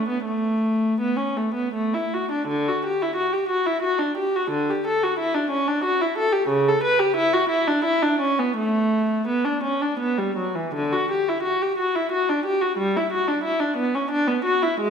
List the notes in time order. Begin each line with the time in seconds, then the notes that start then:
0.09 B3
0.26 A3
1.00 B3
1.17 C#4
1.37 A3
1.55 B3
1.74 A3
1.94 E4
2.14 F#4
2.32 D4
2.48 D3
2.68 F#4
2.86 G4
3.02 E4
3.16 F#4
3.33 G4
3.49 F#4
3.66 E4
3.83 F#4
3.99 D4
4.18 G4
4.36 F#4
4.51 D3
4.70 G4
4.87 A4
5.03 F#4
5.19 E4
5.34 D4
5.50 C#4
5.68 D4
5.84 F#4
6.01 E4
6.18 A4
6.32 G4
6.49 C#3
6.68 A4
6.84 B4
6.99 G4
7.17 E4
7.33 F#4
7.50 E4
7.67 D4
7.85 E4
8.02 D4
8.21 C#4
8.39 B3
8.57 A3
9.28 B3
9.45 D4
9.64 C#4
9.82 D4
10.00 B3
10.18 G3
10.37 F#3
10.55 E3
10.75 D3
10.93 F#4
11.11 G4
11.28 E4
11.43 F#4
11.62 G4
11.79 F#4
11.96 E4
12.12 F#4
12.30 D4
12.46 G4
12.61 F#4
12.78 G3
12.97 E4
13.13 F#4
13.28 D4
13.44 E4
13.60 D4
13.77 B3
13.95 C#4
14.11 D4
14.28 B3
14.45 F#4
14.63 E4
14.81 G#3